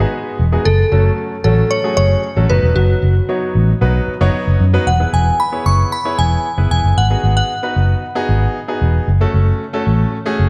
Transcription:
Already playing: B4
0.00 G#3 B3 D#4 F#4 G#4
0.39 E1
0.52 G#3 B3 D#4 F#4 G#4
0.65 F#1 A4
0.92 F#1 F#3 A3 C#4 F#4 A4
1.44 A1 F#3 A3 C#4 F#4 A4
1.71 C#5
1.84 F#3 A3 C#4 F#4 G#4
1.97 F#1 C#5
2.36 A1 F#3 A3 C#4 F#4 A4
2.49 F#1 F#3 B3 D#4 F#4 B4
2.63 E1
2.76 F#1 F#4
3.03 F#1
3.29 F#3 B3 D#4 F#4 C#5
3.55 A1
3.81 B1 F#3 B3 D#4 F#4 B4
4.08 muted fingered electric bass stroke
4.21 F#1 F#3 B3 D#4 F#4 C#5
4.47 F#1
4.60 F#2
4.73 F#3 B3 D#4 F#4 B4
4.87 E1 F#5
5.00 B3 E4 G#4 B4
5.13 E1 G#5
5.40 B5
5.52 B3 E4 G#4 C#5
5.66 F#1 C#6
5.92 B5
6.05 B3 E4 G#4 C#5
6.19 E1 G#5
6.57 F#1 B3 E4 G#4 B4
6.71 E1 G#5
6.84 F#1
6.97 G#1 F#5
7.10 B3 D#4 F#4 G#4
7.24 G#1
7.37 F#5
7.63 B3 D#4 F#4 B4
7.76 F#1
8.15 B3 D#4 F#4 G#4
8.29 G#1
8.68 B3 D#4 F#4 G#4
8.81 E1
9.08 F#1
9.21 A3 C#4 F#4 A4
9.34 F#1
9.73 A3 C#4 F#4 A4
9.87 A1
10.26 A3 C#4 F#4 G#4
10.39 F#1

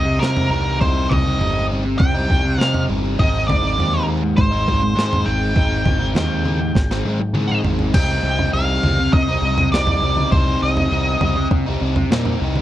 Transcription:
Already playing: C2 C3 D#5
0.06 muted overdriven electric guitar stroke
0.20 C3 G3 C4 D#4 A#4, snare
0.37 floor tom
0.50 C2 C3 G3 C4 D#4 A#4
0.79 C2 C3 G3 C4 D#4 C5, kick, floor tom
1.09 C2 D#5, kick, floor tom, mid tom
1.24 G3 C4 D#4
1.39 G1 C3 G3 C4 D#4, floor tom
1.70 C3 G3 C4 D#4
1.85 muted overdriven electric guitar stroke
1.98 C2 G5, kick, floor tom
2.14 G3 C4 D#4
2.28 C2 C3 G3 C4 D#4, kick, floor tom
2.45 muted overdriven electric guitar stroke
2.58 C3 G3 C4 D#4 F5, snare
2.74 floor tom
2.87 G1 C3 G3 C4 D#4
3.18 G#1 G#2 D#3 G#3 C4 D#4 D#5, kick, floor tom
3.48 G#1 D5, kick, floor tom, mid tom
3.63 G#3 C4 D#4
3.76 D#2 G#2 D#3 G#3 C4 D#4, floor tom
4.06 D#3 G#3 C4 D#4
4.23 muted overdriven electric guitar stroke
4.37 G#1 C5, kick, floor tom
4.51 G#3 C4 D#4
4.66 G#1 D#3 G#3 C4 D#4, kick, floor tom
4.83 muted overdriven electric guitar stroke
4.95 G#2 D#3 G#3 C4 D#4, snare
5.13 floor tom
5.24 G#1 D#3 G#3 C4 D#4 G5
5.54 G#1 G#2 D#3 G#3 C4 D#4, kick, floor tom
5.86 G#1, kick, floor tom, mid tom
6.00 G#3 C4 D#4
6.14 D#2 G#2 D#3 G#3 C4 D#4, snare, floor tom
6.44 D#3 G#3 C4 D#4, mid tom
6.61 muted overdriven electric guitar stroke
6.75 G#1, kick, snare
6.91 G#3 C4 D#4, snare
7.05 G#1 D#3 G#3 C4 D#4, high tom
7.20 muted overdriven electric guitar stroke, high tom
7.33 G#2 D#3 G#3 C4 D#4, mid tom
7.50 mid tom
7.64 G#1 D#3 G#3 C4 D#4, floor tom
7.79 floor tom
7.94 C2 C3 G3 C4 G5, kick, floor tom, crash
7.98 D#4
8.23 C2
8.39 floor tom
8.53 C2 C3 G3 C4 F5
8.57 D#4
8.83 C2 C3 G3 C4 D#4, floor tom, mid tom
8.99 muted overdriven electric guitar stroke
9.13 C2 D#5, kick, floor tom
9.29 G3 C4 D#4
9.42 C2 C3 G3 C4
9.47 D#4
9.58 muted overdriven electric guitar stroke, floor tom
9.71 C2 C3 D5, snare
9.75 G3 C4 D#4
9.87 floor tom
10.01 C2 C3 G3 C4
10.05 D#4
10.17 G3 C4 D#4, mid tom
10.31 C2 C3 G3 C4 D#4 C5, kick, floor tom
10.62 C2 D#5
10.77 floor tom
10.90 C2 C3 G3 C4 D#4
11.21 C2 C3 G3 C4 D#4, floor tom, mid tom
11.36 muted overdriven electric guitar stroke
11.51 C2, kick, floor tom
11.66 G3 C4 D#4
11.81 C2 C3 G3 C4 D#4
11.96 muted overdriven electric guitar stroke, floor tom
12.11 A#2 C3 G3 C4, snare
12.15 D#4
12.25 floor tom
12.41 C2 C3 G3 C4 D#4
12.56 D#4, mid tom

